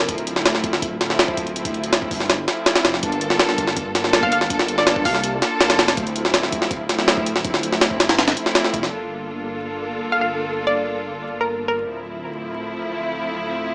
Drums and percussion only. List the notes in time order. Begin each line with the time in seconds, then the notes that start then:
0.08 kick, closed hi-hat
0.18 closed hi-hat
0.27 closed hi-hat
0.36 snare
0.45 snare, closed hi-hat
0.55 snare
0.64 kick, closed hi-hat
0.73 snare
0.82 kick, closed hi-hat
1.01 snare, closed hi-hat
1.10 snare
1.19 snare, closed hi-hat
1.28 kick
1.37 kick, closed hi-hat
1.47 closed hi-hat
1.56 closed hi-hat
1.65 kick, closed hi-hat
1.74 closed hi-hat
1.84 closed hi-hat
1.93 snare, closed hi-hat
2.02 kick
2.11 kick, open hi-hat
2.20 snare
2.30 snare, closed hi-hat
2.48 snare, closed hi-hat
2.66 snare, closed hi-hat
2.75 snare, closed hi-hat
2.85 snare, closed hi-hat
2.94 snare
3.03 kick, closed hi-hat
3.12 closed hi-hat
3.21 closed hi-hat
3.30 snare
3.40 snare, closed hi-hat
3.49 snare
3.58 kick, closed hi-hat
3.67 snare
3.77 kick, closed hi-hat
3.95 snare, closed hi-hat
4.04 snare
4.13 snare, closed hi-hat
4.23 kick
4.32 closed hi-hat
4.41 snare
4.50 kick, closed hi-hat
4.59 snare
4.68 closed hi-hat
4.78 snare
4.87 snare, closed hi-hat
4.96 kick
5.05 kick, open hi-hat
5.15 snare
5.24 closed hi-hat
5.42 snare, closed hi-hat
5.61 snare, closed hi-hat
5.70 snare, closed hi-hat
5.79 snare, closed hi-hat
5.88 snare, closed hi-hat
5.97 kick, closed hi-hat
6.07 closed hi-hat
6.16 closed hi-hat
6.25 snare
6.34 snare, closed hi-hat
6.43 snare
6.52 kick, closed hi-hat
6.62 snare
6.71 kick, closed hi-hat
6.89 snare, closed hi-hat
6.99 snare
7.08 snare, closed hi-hat
7.17 kick
7.26 closed hi-hat
7.36 snare
7.44 kick, closed hi-hat
7.54 snare
7.63 closed hi-hat
7.72 snare
7.81 snare, closed hi-hat
7.91 kick
8.00 snare, closed hi-hat
8.09 snare, closed hi-hat
8.18 snare, closed hi-hat
8.28 snare, closed hi-hat
8.37 closed hi-hat
8.46 snare
8.55 snare, closed hi-hat
8.65 snare
8.74 kick, closed hi-hat
8.83 snare